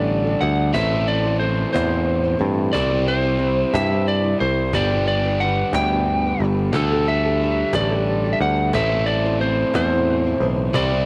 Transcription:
Already playing: picked electric bass A1, overdriven electric guitar D3 G3 D4 A4, steel-string acoustic guitar D4 G4 A4, lead electric guitar D5
0.08 cajon slap
0.24 steel-string acoustic guitar D4 G4 A4
0.41 picked electric bass D2, steel-string acoustic guitar G3 D4 G4 A4, lead electric guitar F#5, cajon slap
0.73 picked electric bass A1, steel-string acoustic guitar A2 E3 A3 C4 E4 C5, lead electric guitar E5, cajon bass
0.77 overdriven electric guitar A4
0.91 steel-string acoustic guitar A3 C4 E4 C5
1.08 lead electric guitar D5, cajon slap
1.23 steel-string acoustic guitar A3 C4 E4 C5
1.40 steel-string acoustic guitar A3 C4 E4 C5, lead electric guitar C5, cajon slap
1.73 picked electric bass E2, steel-string acoustic guitar A2 E3 A3 C4 E4 C5, lead electric guitar C5, cajon bass, cajon slap
1.90 steel-string acoustic guitar A3 C4 E4 C5
2.08 cajon slap
2.23 steel-string acoustic guitar A3 C4 E4 C5
2.39 picked electric bass G2, steel-string acoustic guitar A3 C4 E4 C5, cajon slap
2.73 picked electric bass C2, steel-string acoustic guitar C3 E3 G3 C4 E4 C5, lead electric guitar D5, cajon bass
2.77 overdriven electric guitar G4
2.90 steel-string acoustic guitar G3 C4 E4 C5
3.08 lead electric guitar C5, cajon slap
3.23 steel-string acoustic guitar G3 C4 E4 C5
3.38 steel-string acoustic guitar G3 C4 E4 C5, cajon slap
3.73 picked electric bass G2, steel-string acoustic guitar C3 E3 G3 C4 E4 C5, lead electric guitar E5, cajon bass, cajon slap
3.90 steel-string acoustic guitar G3 C4 E4 C5
4.07 lead electric guitar D5, cajon slap
4.24 steel-string acoustic guitar G3 C4 E4 C5
4.40 picked electric bass C2, steel-string acoustic guitar G3 C4 E4 C5, lead electric guitar C5, cajon slap
4.72 picked electric bass G1, overdriven electric guitar G2 D3 B3, steel-string acoustic guitar G3 D4 G4 B4, lead electric guitar D5, cajon bass
4.91 steel-string acoustic guitar D4 G4 B4
5.06 lead electric guitar D5, cajon slap
5.25 steel-string acoustic guitar D4 G4 B4
5.40 steel-string acoustic guitar G3 D4 G4, lead electric guitar F#5, cajon slap
5.45 steel-string acoustic guitar B4
5.73 picked electric bass D2, steel-string acoustic guitar G3, lead electric guitar G5, cajon bass, cajon slap
5.77 steel-string acoustic guitar D4 G4 B4
5.91 steel-string acoustic guitar D4 G4 B4
6.06 cajon slap
6.25 steel-string acoustic guitar D4 G4 B4
6.39 picked electric bass G1, steel-string acoustic guitar G3, cajon slap
6.43 steel-string acoustic guitar D4 G4 B4
6.73 picked electric bass D2, steel-string acoustic guitar D3 G3 D4 G4 A4, lead electric guitar A4, cajon bass
6.91 steel-string acoustic guitar D4 G4 A4
7.06 lead electric guitar E5, cajon slap
7.25 steel-string acoustic guitar D4 G4 A4
7.39 steel-string acoustic guitar G3 D4, cajon slap
7.44 steel-string acoustic guitar G4 A4
7.73 picked electric bass A1, steel-string acoustic guitar D3 G3 D4 G4 A4, lead electric guitar D5, cajon bass, cajon slap
7.91 steel-string acoustic guitar D4 G4 A4
8.07 cajon slap
8.25 steel-string acoustic guitar D4 G4 A4
8.33 lead electric guitar E5
8.39 picked electric bass D2, steel-string acoustic guitar G3 D4 G4 A4, lead electric guitar F#5, cajon slap
8.73 picked electric bass A1, steel-string acoustic guitar A2 E3 A3 C4 E4 C5, overdriven electric guitar A4, lead electric guitar E5, cajon bass
8.91 steel-string acoustic guitar A3 C4 E4 C5
9.06 lead electric guitar D5, cajon slap
9.25 steel-string acoustic guitar A3 C4 E4 C5
9.41 steel-string acoustic guitar A3 C4 E4 C5, lead electric guitar C5, cajon slap
9.74 picked electric bass E2, steel-string acoustic guitar A2 E3 A3 C4 E4 C5, lead electric guitar C5, cajon bass, cajon slap
9.93 steel-string acoustic guitar A3 C4 E4 C5
10.08 cajon slap
10.25 steel-string acoustic guitar A3 C4 E4 C5
10.40 picked electric bass B1, steel-string acoustic guitar A3 C4 E4 C5, cajon slap
10.73 picked electric bass C2, steel-string acoustic guitar C3 E3 G3 C4 E4 C5, lead electric guitar D5, cajon bass
10.77 overdriven electric guitar G4
10.92 steel-string acoustic guitar G3 C4 E4 C5

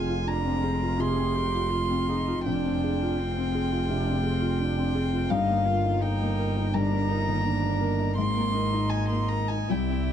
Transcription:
Already playing: double bass F1, felt piano F2 C4 G#4, string section G#3 C4 F4, cello F4, violin G#5
0.09 felt piano F4
0.28 cello D4, violin A#5
0.46 felt piano C4
0.63 cello C4, felt piano G#4
0.82 felt piano F4
0.98 felt piano C3, cello G#4, violin C6
1.18 felt piano C4
1.35 cello G4, felt piano G#4
1.54 felt piano F4
1.71 cello F4
1.90 felt piano C4
2.09 cello D#4, felt piano G#4
2.28 felt piano F4
2.45 double bass F1, felt piano F2, string section C4 F4 G#4, cello D4, violin G5
2.65 felt piano C4
2.84 felt piano G#4
3.02 felt piano F4
3.19 cello C4
3.38 felt piano C4
3.55 felt piano G#4
3.72 felt piano F4
3.90 felt piano C3, cello D4
4.07 felt piano C4
4.23 cello C4, felt piano G#4
4.41 felt piano F4
4.59 cello D4
4.77 felt piano C4
4.95 cello C4, felt piano G#4
5.13 felt piano F4
5.30 double bass G1, felt piano G2, string section D#3 A#3 A#4, cello D#4, violin F5
5.48 felt piano A#3
5.66 cello F4, felt piano A#4
5.85 felt piano D#4
6.01 cello D#4, violin G5
6.21 felt piano A#3
6.39 felt piano A#4
6.56 felt piano D#4
6.73 felt piano G2, cello D4, violin A#5
6.92 felt piano A#3
7.08 cello D#4, felt piano A#4
7.28 felt piano D#3
7.44 cello D4
7.63 felt piano A#3
7.81 felt piano A#4
7.99 felt piano D#4
8.16 double bass G#1, felt piano G#2, cello C4, violin C6
8.36 felt piano A#3
8.52 cello D#4, felt piano A#4
8.73 felt piano D#4
8.90 violin G#5
9.09 felt piano A#3, violin C6
9.29 felt piano A#4, violin A#5
9.49 felt piano D#4, violin G#5
9.68 double bass C2, felt piano C2, string section C4 D5 E5, cello E4, violin G5
9.90 felt piano C4

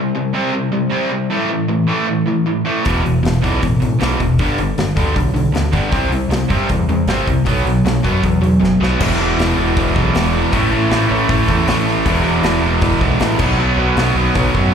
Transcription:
Already playing: overdriven electric guitar C3 G3
0.15 overdriven electric guitar C3 G3
0.33 overdriven electric guitar C3 G3 C4
0.52 overdriven electric guitar C3 G3
0.72 overdriven electric guitar C3 G3
0.90 overdriven electric guitar C3 G3 C4
1.09 overdriven electric guitar C3 G3
1.30 overdriven electric guitar A2 E3 A3
1.49 overdriven electric guitar A2 E3
1.69 overdriven electric guitar A2 E3
1.87 overdriven electric guitar A2 E3 A3
2.06 overdriven electric guitar A2 E3
2.26 overdriven electric guitar A2 E3
2.47 overdriven electric guitar A2 E3
2.65 overdriven electric guitar A2 E3 A3
2.84 picked electric bass E1, overdriven electric guitar E2 B2 E3, kick, open hi-hat
3.04 picked electric bass E1, overdriven electric guitar E2 B2, open hi-hat
3.23 picked electric bass E1, overdriven electric guitar E2 B2, snare, open hi-hat
3.42 picked electric bass B1, overdriven electric guitar E2 B2 E3, kick, open hi-hat
3.61 picked electric bass A1, overdriven electric guitar E2 B2, kick, open hi-hat
3.80 picked electric bass A1, overdriven electric guitar E2 B2, open hi-hat
3.99 picked electric bass B1, overdriven electric guitar E2 B2 E3, snare, open hi-hat
4.19 picked electric bass E1, overdriven electric guitar E2 B2, kick, open hi-hat
4.39 picked electric bass G1, overdriven electric guitar G2 D3 G3, kick, open hi-hat
4.58 picked electric bass G1, overdriven electric guitar G2 D3, open hi-hat
4.77 picked electric bass G1, overdriven electric guitar G2 D3, snare, open hi-hat
4.96 picked electric bass D2, overdriven electric guitar G2 D3 G3, kick, open hi-hat
5.15 picked electric bass B1, overdriven electric guitar G2 D3, kick, open hi-hat
5.34 picked electric bass B1, overdriven electric guitar G2 D3, open hi-hat
5.52 picked electric bass D2, overdriven electric guitar G2 D3, snare, open hi-hat
5.71 picked electric bass G1, overdriven electric guitar G2 D3 G3, kick, open hi-hat
5.90 picked electric bass C2, overdriven electric guitar C3 G3 C4, kick, open hi-hat
6.09 picked electric bass C2, overdriven electric guitar C3 G3, open hi-hat
6.28 picked electric bass C2, overdriven electric guitar C3 G3, open hi-hat
6.32 snare
6.48 picked electric bass G2, overdriven electric guitar C3 G3 C4, kick, open hi-hat
6.69 picked electric bass E2, overdriven electric guitar C3 G3, kick, open hi-hat
6.89 picked electric bass E2, overdriven electric guitar C3 G3, open hi-hat
7.07 picked electric bass G1, overdriven electric guitar C3 G3 C4, snare, open hi-hat
7.27 picked electric bass C2, overdriven electric guitar C3 G3, kick, open hi-hat
7.46 picked electric bass B1, overdriven electric guitar B2 F#3 B3, kick, open hi-hat
7.64 picked electric bass B1, overdriven electric guitar B2 F#3, open hi-hat
7.84 picked electric bass B1, overdriven electric guitar B2 F#3, snare, open hi-hat
8.04 picked electric bass F#2, overdriven electric guitar B2 F#3 B3, kick, open hi-hat
8.23 picked electric bass E2, overdriven electric guitar B2 F#3, kick, open hi-hat
8.42 picked electric bass E2, overdriven electric guitar B2 F#3, open hi-hat
8.60 picked electric bass F#1, overdriven electric guitar B2 F#3, snare
8.80 picked electric bass B1, overdriven electric guitar B2 F#3 B3, snare
8.99 picked electric bass E1, overdriven electric guitar E2 B2 E3 G#3 B3 E4, kick, crash
9.19 picked electric bass E1, overdriven electric guitar E2 B2 E3
9.38 picked electric bass E1, overdriven electric guitar E2 B2 E3, snare, open hi-hat
9.57 picked electric bass E1, overdriven electric guitar E2 B2 E3
9.76 picked electric bass E1, overdriven electric guitar E2 B2 E3, kick, open hi-hat
9.96 picked electric bass B1, overdriven electric guitar E2 B2 E3, kick
10.15 picked electric bass E1, overdriven electric guitar E2 B2 E3, snare, open hi-hat
10.34 overdriven electric guitar E2 B2 E3
10.52 picked electric bass A1, overdriven electric guitar A2 E3 A3 C#4 E4, kick, open hi-hat
10.71 picked electric bass A1, overdriven electric guitar A2 E3 A3
10.89 picked electric bass A1, overdriven electric guitar A2 E3 A3, snare, open hi-hat
11.08 picked electric bass A1, overdriven electric guitar A2 E3 A3
11.28 picked electric bass A1, overdriven electric guitar A2 E3 A3, kick, open hi-hat
11.47 picked electric bass E2, overdriven electric guitar A2 E3 A3, kick
11.66 picked electric bass A1, overdriven electric guitar A2 E3 A3, snare, open hi-hat
11.86 overdriven electric guitar A2 E3 A3
12.05 picked electric bass E1, overdriven electric guitar E2 B2 E3 G#3 B3 E4, kick, open hi-hat
12.23 picked electric bass E1, overdriven electric guitar E2 B2 E3
12.42 picked electric bass E1, overdriven electric guitar E2 B2 E3, snare, open hi-hat
12.62 picked electric bass E1, overdriven electric guitar E2 B2 E3
12.81 picked electric bass E1, overdriven electric guitar E2 B2 E3, kick, open hi-hat
13.00 picked electric bass B1, overdriven electric guitar E2 B2 E3, kick
13.20 picked electric bass A1, overdriven electric guitar E2 B2 E3, snare, open hi-hat
13.38 picked electric bass B1, overdriven electric guitar B2 D#3 F#3 B3, kick, crash
13.43 overdriven electric guitar D#4
13.57 picked electric bass B1, overdriven electric guitar B2 F#3 B3
13.76 picked electric bass B1, overdriven electric guitar B2 F#3 B3
13.96 picked electric bass B1, overdriven electric guitar B2 F#3 B3, snare, open hi-hat
14.15 picked electric bass B1, overdriven electric guitar B2 F#3 B3
14.35 picked electric bass B1, overdriven electric guitar B2 F#3 B3, kick, open hi-hat
14.52 picked electric bass F#2, overdriven electric guitar B2 F#3 B3, kick

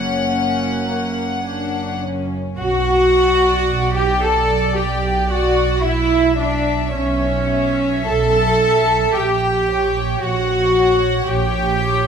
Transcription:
Already playing: double bass section F#1, cello section F#2, viola section A#3 C#4, violin section C#4 C#5 F#5
0.31 violin section C#4
0.88 violin section A#3
1.45 violin section D4
2.03 violin section C#4
2.57 double bass section B1, viola section F#4, cello section F#4, violin section F#5
3.14 violin section D5
3.68 double bass section B1
3.94 viola section G4, cello section G4, violin section G5
4.22 cello section A4, viola section A4, violin section D5 A5
4.76 double bass section B1, viola section G4, cello section G4, violin section G5
5.30 viola section F#4, cello section F#4, violin section D5 F#5
5.84 double bass section B1, cello section E4, viola section E4, violin section E5
6.38 viola section D4, cello section D4, violin section D5 E5
6.92 double bass section B1, cello section C#4, viola section C#4, violin section C#5
7.49 violin section E5
8.06 double bass section B1, cello section A4, viola section A4, violin section A5
8.63 violin section E5
9.14 double bass section A#1, cello section G4, viola section G4, violin section G5
9.70 violin section C#5
10.21 double bass section A#1, viola section F#4, cello section F#4, violin section F#5
10.75 violin section C#5
11.26 double bass section A#1, viola section G4, cello section G4, violin section G5
11.78 violin section C#5

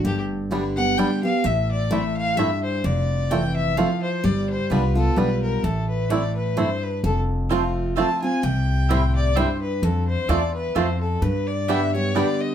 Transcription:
0.04 upright bass G1, steel-string acoustic guitar G2, fiddle G4
0.51 steel-string acoustic guitar D3 G3 B3 G4, five-string banjo G3 B3 D4
0.76 steel-string acoustic guitar B3 G4, fiddle F#5
0.97 steel-string acoustic guitar D3 G3 B3 G4, five-string banjo G3 B3 D4, fiddle G5
1.23 steel-string acoustic guitar B3 G4, fiddle F5
1.44 upright bass A1, steel-string acoustic guitar A2, fiddle E5
1.71 fiddle D5
1.91 steel-string acoustic guitar A2, five-string banjo A3 C4 E4, fiddle E5
2.17 fiddle F5
2.37 steel-string acoustic guitar G2, five-string banjo A3 C4 E4, fiddle E5
2.63 fiddle C5
2.84 upright bass F1, steel-string acoustic guitar F2, fiddle D5
3.31 steel-string acoustic guitar E3, five-string banjo A3 C4 F4, fiddle G5
3.56 fiddle E5
3.77 steel-string acoustic guitar F3, five-string banjo A3 C4 F4, fiddle F5
4.02 fiddle C5
4.24 upright bass G1, steel-string acoustic guitar G3, fiddle D5
4.50 fiddle C5
4.70 upright bass C2, steel-string acoustic guitar G3 B3 F4, five-string banjo G3 B3 D4, fiddle B4
4.95 steel-string acoustic guitar B3 F4, fiddle A4
5.16 upright bass B1, steel-string acoustic guitar G3 B3 F4, five-string banjo G3 B3 D4, fiddle B4
5.42 fiddle A#4
5.63 upright bass A1, steel-string acoustic guitar A2, fiddle A4
5.89 fiddle B4
6.10 steel-string acoustic guitar A2, five-string banjo A3 C4 E4, fiddle D5
6.36 fiddle B4
6.57 steel-string acoustic guitar G2, five-string banjo A3 C4 E4, fiddle C5
6.83 fiddle B4
7.03 upright bass F1, steel-string acoustic guitar F2, fiddle A4
7.49 steel-string acoustic guitar F3 A3 C4 F4, five-string banjo A3 C4 F4, mandolin C4 F4 C5 A5
7.96 steel-string acoustic guitar F3 A3 C4 F4, five-string banjo A3 C4 F4, mandolin C4 F4 C5 A5, fiddle A5
8.22 steel-string acoustic guitar C4 F4, fiddle G#5
8.43 upright bass C2, steel-string acoustic guitar C3, fiddle G5
8.89 steel-string acoustic guitar A2, five-string banjo G3 C4 E4, mandolin C4 E4 C5 G5
9.15 fiddle D5
9.35 steel-string acoustic guitar G2, five-string banjo G3 C4 E4, mandolin C4 E4 C5 G5, fiddle C5
9.62 fiddle B4
9.82 upright bass F2, steel-string acoustic guitar F2, fiddle A4
10.08 fiddle C5
10.28 upright bass E2, steel-string acoustic guitar E2, five-string banjo A3 C4 F4, mandolin C4 F4 C5 A5, fiddle D5
10.54 fiddle B4
10.75 upright bass F2, steel-string acoustic guitar F2, five-string banjo A3 C4 F4, mandolin C4 F4 C5 A5, fiddle C5
11.01 fiddle A4
11.22 upright bass G2, steel-string acoustic guitar G2, fiddle B4
11.47 fiddle D5
11.68 steel-string acoustic guitar D3 G3 B3 G4, five-string banjo G3 B3 D4, mandolin B3 G4 D5 G5, fiddle E5
11.94 steel-string acoustic guitar B3 G4, fiddle C#5
12.14 steel-string acoustic guitar D3 G3 B3 G4, five-string banjo G3 B3 D4, mandolin B3 G4 D5 G5, fiddle D5
12.41 fiddle D#5

